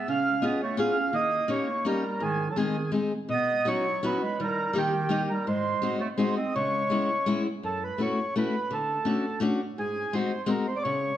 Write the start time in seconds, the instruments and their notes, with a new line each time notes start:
0.08 steel-string acoustic guitar C#3, clarinet C#4, accordion F5
0.42 steel-string acoustic guitar B3 C#4 F4 G#4, clarinet B3, accordion D#5
0.62 clarinet A3, accordion C#5
0.77 steel-string acoustic guitar B3 C#4 F4 G#4, clarinet C#4, accordion F5
1.13 steel-string acoustic guitar D#3, clarinet A#3, accordion D#5
1.48 steel-string acoustic guitar A#3 C#4 D#4 G4, clarinet A#3, accordion C#5
1.85 clarinet G3, steel-string acoustic guitar A#3 C#4 D#4 G4, accordion A#4
2.20 steel-string acoustic guitar G#2, clarinet D#3, accordion G#4
2.50 clarinet F#3, accordion A4
2.56 clarinet D#3, steel-string acoustic guitar G#3 C4 D#4 G#4, accordion G#4
2.92 steel-string acoustic guitar G#3 C4 D#4 G#4
3.29 steel-string acoustic guitar B2, clarinet B3, accordion D#5
3.65 clarinet F#3, steel-string acoustic guitar B3 C#4 D#4 F#4, accordion C#5
4.03 clarinet F#3, steel-string acoustic guitar B3 C#4 D#4 F#4, accordion B4
4.21 clarinet G#3, accordion B4
4.40 steel-string acoustic guitar D#3, clarinet G3
4.44 accordion A#4
4.73 clarinet D#3, steel-string acoustic guitar G3 A#3 D#4 G4
4.78 accordion G4
5.09 steel-string acoustic guitar G3 A#3 D#4 G4
5.30 clarinet G3, accordion A#4
5.47 steel-string acoustic guitar G#2, clarinet G#3, accordion C5
5.82 steel-string acoustic guitar G#3 C4 D#4 F#4
5.99 clarinet A3, accordion C#5
6.17 steel-string acoustic guitar G#3 C4 D#4 F#4, clarinet G#3, accordion C5
6.36 clarinet C4, accordion D#5
6.55 steel-string acoustic guitar C#3, clarinet G#3, accordion C#5
6.90 steel-string acoustic guitar G#3 B3 C#4 E4
7.26 steel-string acoustic guitar G#3 B3 C#4 E4
7.63 steel-string acoustic guitar F#2, accordion A4
7.84 accordion B4
7.98 steel-string acoustic guitar A3 C#4 E4 F#4, accordion C#5
8.36 steel-string acoustic guitar A3 C#4 E4 F#4, accordion B4
8.71 steel-string acoustic guitar D3, accordion A4
9.05 steel-string acoustic guitar A3 C#4 D4 F#4
9.40 steel-string acoustic guitar A3 C#4 D4 F#4
9.78 steel-string acoustic guitar G#2, accordion G#4
10.13 steel-string acoustic guitar G#3 C4 D#4 F#4, accordion C5
10.46 steel-string acoustic guitar G#3 C4 D#4 F#4, accordion A#4
10.67 accordion C5
10.76 accordion D5
10.83 steel-string acoustic guitar C#3, accordion C#5